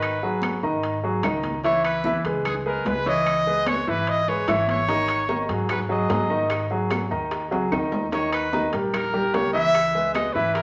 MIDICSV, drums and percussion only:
0, 0, Header, 1, 2, 480
1, 0, Start_track
1, 0, Key_signature, 5, "minor"
1, 0, Tempo, 404858
1, 30, Time_signature, 4, 2, 24, 8
1, 12591, End_track
2, 0, Start_track
2, 0, Title_t, "Drums"
2, 23, Note_on_c, 9, 63, 35
2, 29, Note_on_c, 9, 65, 82
2, 38, Note_on_c, 9, 75, 65
2, 142, Note_off_c, 9, 63, 0
2, 148, Note_off_c, 9, 65, 0
2, 157, Note_off_c, 9, 75, 0
2, 261, Note_on_c, 9, 63, 35
2, 380, Note_off_c, 9, 63, 0
2, 495, Note_on_c, 9, 63, 85
2, 509, Note_on_c, 9, 65, 95
2, 509, Note_on_c, 9, 66, 58
2, 511, Note_on_c, 9, 75, 70
2, 614, Note_off_c, 9, 63, 0
2, 628, Note_off_c, 9, 65, 0
2, 628, Note_off_c, 9, 66, 0
2, 629, Note_off_c, 9, 75, 0
2, 739, Note_on_c, 9, 63, 37
2, 858, Note_off_c, 9, 63, 0
2, 977, Note_on_c, 9, 63, 33
2, 989, Note_on_c, 9, 65, 69
2, 1095, Note_off_c, 9, 63, 0
2, 1107, Note_off_c, 9, 65, 0
2, 1218, Note_on_c, 9, 63, 35
2, 1337, Note_off_c, 9, 63, 0
2, 1456, Note_on_c, 9, 63, 34
2, 1461, Note_on_c, 9, 65, 90
2, 1461, Note_on_c, 9, 66, 86
2, 1471, Note_on_c, 9, 75, 73
2, 1575, Note_off_c, 9, 63, 0
2, 1580, Note_off_c, 9, 65, 0
2, 1580, Note_off_c, 9, 66, 0
2, 1590, Note_off_c, 9, 75, 0
2, 1698, Note_on_c, 9, 63, 83
2, 1703, Note_on_c, 9, 65, 64
2, 1817, Note_off_c, 9, 63, 0
2, 1821, Note_off_c, 9, 65, 0
2, 1939, Note_on_c, 9, 63, 35
2, 1950, Note_on_c, 9, 65, 61
2, 2057, Note_off_c, 9, 63, 0
2, 2068, Note_off_c, 9, 65, 0
2, 2181, Note_on_c, 9, 63, 35
2, 2187, Note_on_c, 9, 65, 86
2, 2191, Note_on_c, 9, 75, 62
2, 2299, Note_off_c, 9, 63, 0
2, 2306, Note_off_c, 9, 65, 0
2, 2310, Note_off_c, 9, 75, 0
2, 2418, Note_on_c, 9, 63, 88
2, 2427, Note_on_c, 9, 66, 60
2, 2537, Note_off_c, 9, 63, 0
2, 2545, Note_off_c, 9, 66, 0
2, 2664, Note_on_c, 9, 65, 70
2, 2782, Note_off_c, 9, 65, 0
2, 2903, Note_on_c, 9, 63, 33
2, 2903, Note_on_c, 9, 64, 80
2, 2907, Note_on_c, 9, 65, 92
2, 2910, Note_on_c, 9, 75, 63
2, 3021, Note_off_c, 9, 63, 0
2, 3021, Note_off_c, 9, 64, 0
2, 3026, Note_off_c, 9, 65, 0
2, 3028, Note_off_c, 9, 75, 0
2, 3143, Note_on_c, 9, 63, 34
2, 3262, Note_off_c, 9, 63, 0
2, 3380, Note_on_c, 9, 63, 80
2, 3390, Note_on_c, 9, 65, 65
2, 3390, Note_on_c, 9, 66, 86
2, 3499, Note_off_c, 9, 63, 0
2, 3509, Note_off_c, 9, 65, 0
2, 3509, Note_off_c, 9, 66, 0
2, 3624, Note_on_c, 9, 63, 36
2, 3743, Note_off_c, 9, 63, 0
2, 3866, Note_on_c, 9, 63, 32
2, 3870, Note_on_c, 9, 75, 64
2, 3871, Note_on_c, 9, 65, 82
2, 3984, Note_off_c, 9, 63, 0
2, 3989, Note_off_c, 9, 75, 0
2, 3990, Note_off_c, 9, 65, 0
2, 4105, Note_on_c, 9, 63, 36
2, 4224, Note_off_c, 9, 63, 0
2, 4344, Note_on_c, 9, 65, 94
2, 4344, Note_on_c, 9, 66, 58
2, 4345, Note_on_c, 9, 63, 90
2, 4356, Note_on_c, 9, 75, 65
2, 4462, Note_off_c, 9, 65, 0
2, 4462, Note_off_c, 9, 66, 0
2, 4464, Note_off_c, 9, 63, 0
2, 4474, Note_off_c, 9, 75, 0
2, 4588, Note_on_c, 9, 63, 37
2, 4707, Note_off_c, 9, 63, 0
2, 4828, Note_on_c, 9, 65, 71
2, 4831, Note_on_c, 9, 63, 34
2, 4947, Note_off_c, 9, 65, 0
2, 4950, Note_off_c, 9, 63, 0
2, 5069, Note_on_c, 9, 63, 32
2, 5188, Note_off_c, 9, 63, 0
2, 5309, Note_on_c, 9, 65, 86
2, 5309, Note_on_c, 9, 66, 87
2, 5312, Note_on_c, 9, 63, 32
2, 5315, Note_on_c, 9, 75, 67
2, 5428, Note_off_c, 9, 65, 0
2, 5428, Note_off_c, 9, 66, 0
2, 5431, Note_off_c, 9, 63, 0
2, 5434, Note_off_c, 9, 75, 0
2, 5545, Note_on_c, 9, 63, 84
2, 5557, Note_on_c, 9, 65, 67
2, 5663, Note_off_c, 9, 63, 0
2, 5676, Note_off_c, 9, 65, 0
2, 5792, Note_on_c, 9, 65, 64
2, 5793, Note_on_c, 9, 63, 34
2, 5794, Note_on_c, 9, 60, 75
2, 5910, Note_off_c, 9, 65, 0
2, 5912, Note_off_c, 9, 63, 0
2, 5913, Note_off_c, 9, 60, 0
2, 6027, Note_on_c, 9, 65, 96
2, 6030, Note_on_c, 9, 63, 35
2, 6033, Note_on_c, 9, 60, 33
2, 6038, Note_on_c, 9, 75, 67
2, 6145, Note_off_c, 9, 65, 0
2, 6149, Note_off_c, 9, 63, 0
2, 6151, Note_off_c, 9, 60, 0
2, 6156, Note_off_c, 9, 75, 0
2, 6270, Note_on_c, 9, 60, 63
2, 6270, Note_on_c, 9, 63, 80
2, 6271, Note_on_c, 9, 66, 61
2, 6389, Note_off_c, 9, 60, 0
2, 6389, Note_off_c, 9, 63, 0
2, 6389, Note_off_c, 9, 66, 0
2, 6511, Note_on_c, 9, 65, 68
2, 6516, Note_on_c, 9, 60, 38
2, 6630, Note_off_c, 9, 65, 0
2, 6635, Note_off_c, 9, 60, 0
2, 6747, Note_on_c, 9, 65, 88
2, 6748, Note_on_c, 9, 63, 35
2, 6748, Note_on_c, 9, 64, 79
2, 6750, Note_on_c, 9, 60, 68
2, 6758, Note_on_c, 9, 75, 67
2, 6865, Note_off_c, 9, 65, 0
2, 6866, Note_off_c, 9, 63, 0
2, 6866, Note_off_c, 9, 64, 0
2, 6868, Note_off_c, 9, 60, 0
2, 6877, Note_off_c, 9, 75, 0
2, 6993, Note_on_c, 9, 63, 33
2, 7112, Note_off_c, 9, 63, 0
2, 7229, Note_on_c, 9, 63, 83
2, 7230, Note_on_c, 9, 60, 32
2, 7230, Note_on_c, 9, 61, 73
2, 7230, Note_on_c, 9, 65, 72
2, 7230, Note_on_c, 9, 66, 86
2, 7348, Note_off_c, 9, 63, 0
2, 7348, Note_off_c, 9, 65, 0
2, 7348, Note_off_c, 9, 66, 0
2, 7349, Note_off_c, 9, 60, 0
2, 7349, Note_off_c, 9, 61, 0
2, 7466, Note_on_c, 9, 60, 33
2, 7467, Note_on_c, 9, 63, 31
2, 7585, Note_off_c, 9, 60, 0
2, 7586, Note_off_c, 9, 63, 0
2, 7703, Note_on_c, 9, 65, 84
2, 7707, Note_on_c, 9, 60, 74
2, 7712, Note_on_c, 9, 63, 37
2, 7720, Note_on_c, 9, 75, 61
2, 7822, Note_off_c, 9, 65, 0
2, 7825, Note_off_c, 9, 60, 0
2, 7831, Note_off_c, 9, 63, 0
2, 7839, Note_off_c, 9, 75, 0
2, 7943, Note_on_c, 9, 60, 31
2, 7954, Note_on_c, 9, 63, 34
2, 8062, Note_off_c, 9, 60, 0
2, 8072, Note_off_c, 9, 63, 0
2, 8186, Note_on_c, 9, 65, 87
2, 8186, Note_on_c, 9, 66, 61
2, 8192, Note_on_c, 9, 60, 60
2, 8197, Note_on_c, 9, 75, 64
2, 8198, Note_on_c, 9, 63, 90
2, 8305, Note_off_c, 9, 65, 0
2, 8305, Note_off_c, 9, 66, 0
2, 8311, Note_off_c, 9, 60, 0
2, 8315, Note_off_c, 9, 75, 0
2, 8316, Note_off_c, 9, 63, 0
2, 8433, Note_on_c, 9, 60, 38
2, 8436, Note_on_c, 9, 63, 35
2, 8552, Note_off_c, 9, 60, 0
2, 8554, Note_off_c, 9, 63, 0
2, 8670, Note_on_c, 9, 60, 65
2, 8673, Note_on_c, 9, 65, 68
2, 8674, Note_on_c, 9, 63, 34
2, 8789, Note_off_c, 9, 60, 0
2, 8792, Note_off_c, 9, 63, 0
2, 8792, Note_off_c, 9, 65, 0
2, 8909, Note_on_c, 9, 63, 35
2, 8917, Note_on_c, 9, 65, 81
2, 9028, Note_off_c, 9, 63, 0
2, 9036, Note_off_c, 9, 65, 0
2, 9153, Note_on_c, 9, 60, 33
2, 9153, Note_on_c, 9, 61, 79
2, 9153, Note_on_c, 9, 75, 62
2, 9155, Note_on_c, 9, 65, 90
2, 9271, Note_off_c, 9, 60, 0
2, 9271, Note_off_c, 9, 61, 0
2, 9272, Note_off_c, 9, 75, 0
2, 9274, Note_off_c, 9, 65, 0
2, 9390, Note_on_c, 9, 63, 76
2, 9392, Note_on_c, 9, 66, 88
2, 9399, Note_on_c, 9, 60, 31
2, 9509, Note_off_c, 9, 63, 0
2, 9510, Note_off_c, 9, 66, 0
2, 9518, Note_off_c, 9, 60, 0
2, 9632, Note_on_c, 9, 65, 61
2, 9638, Note_on_c, 9, 63, 37
2, 9639, Note_on_c, 9, 60, 71
2, 9750, Note_off_c, 9, 65, 0
2, 9756, Note_off_c, 9, 63, 0
2, 9757, Note_off_c, 9, 60, 0
2, 9870, Note_on_c, 9, 65, 91
2, 9874, Note_on_c, 9, 63, 33
2, 9875, Note_on_c, 9, 75, 65
2, 9883, Note_on_c, 9, 60, 31
2, 9989, Note_off_c, 9, 65, 0
2, 9993, Note_off_c, 9, 63, 0
2, 9993, Note_off_c, 9, 75, 0
2, 10001, Note_off_c, 9, 60, 0
2, 10106, Note_on_c, 9, 66, 57
2, 10116, Note_on_c, 9, 63, 89
2, 10124, Note_on_c, 9, 60, 62
2, 10225, Note_off_c, 9, 66, 0
2, 10235, Note_off_c, 9, 63, 0
2, 10243, Note_off_c, 9, 60, 0
2, 10348, Note_on_c, 9, 65, 72
2, 10364, Note_on_c, 9, 60, 35
2, 10466, Note_off_c, 9, 65, 0
2, 10482, Note_off_c, 9, 60, 0
2, 10594, Note_on_c, 9, 63, 33
2, 10594, Note_on_c, 9, 64, 78
2, 10595, Note_on_c, 9, 75, 68
2, 10598, Note_on_c, 9, 65, 86
2, 10603, Note_on_c, 9, 60, 62
2, 10713, Note_off_c, 9, 63, 0
2, 10713, Note_off_c, 9, 64, 0
2, 10713, Note_off_c, 9, 75, 0
2, 10717, Note_off_c, 9, 65, 0
2, 10721, Note_off_c, 9, 60, 0
2, 10835, Note_on_c, 9, 63, 31
2, 10835, Note_on_c, 9, 64, 66
2, 10954, Note_off_c, 9, 63, 0
2, 10954, Note_off_c, 9, 64, 0
2, 11074, Note_on_c, 9, 63, 80
2, 11076, Note_on_c, 9, 60, 30
2, 11076, Note_on_c, 9, 61, 72
2, 11076, Note_on_c, 9, 65, 71
2, 11076, Note_on_c, 9, 66, 88
2, 11192, Note_off_c, 9, 63, 0
2, 11194, Note_off_c, 9, 65, 0
2, 11194, Note_off_c, 9, 66, 0
2, 11195, Note_off_c, 9, 60, 0
2, 11195, Note_off_c, 9, 61, 0
2, 11313, Note_on_c, 9, 63, 34
2, 11318, Note_on_c, 9, 60, 32
2, 11431, Note_off_c, 9, 63, 0
2, 11437, Note_off_c, 9, 60, 0
2, 11554, Note_on_c, 9, 75, 60
2, 11555, Note_on_c, 9, 60, 75
2, 11557, Note_on_c, 9, 65, 82
2, 11673, Note_off_c, 9, 60, 0
2, 11673, Note_off_c, 9, 75, 0
2, 11675, Note_off_c, 9, 65, 0
2, 11791, Note_on_c, 9, 63, 35
2, 11794, Note_on_c, 9, 60, 31
2, 11909, Note_off_c, 9, 63, 0
2, 11913, Note_off_c, 9, 60, 0
2, 12029, Note_on_c, 9, 63, 85
2, 12035, Note_on_c, 9, 65, 90
2, 12035, Note_on_c, 9, 66, 61
2, 12037, Note_on_c, 9, 75, 70
2, 12040, Note_on_c, 9, 60, 58
2, 12147, Note_off_c, 9, 63, 0
2, 12154, Note_off_c, 9, 65, 0
2, 12154, Note_off_c, 9, 66, 0
2, 12155, Note_off_c, 9, 75, 0
2, 12159, Note_off_c, 9, 60, 0
2, 12265, Note_on_c, 9, 63, 36
2, 12274, Note_on_c, 9, 60, 38
2, 12384, Note_off_c, 9, 63, 0
2, 12393, Note_off_c, 9, 60, 0
2, 12508, Note_on_c, 9, 63, 34
2, 12509, Note_on_c, 9, 65, 72
2, 12510, Note_on_c, 9, 60, 65
2, 12591, Note_off_c, 9, 60, 0
2, 12591, Note_off_c, 9, 63, 0
2, 12591, Note_off_c, 9, 65, 0
2, 12591, End_track
0, 0, End_of_file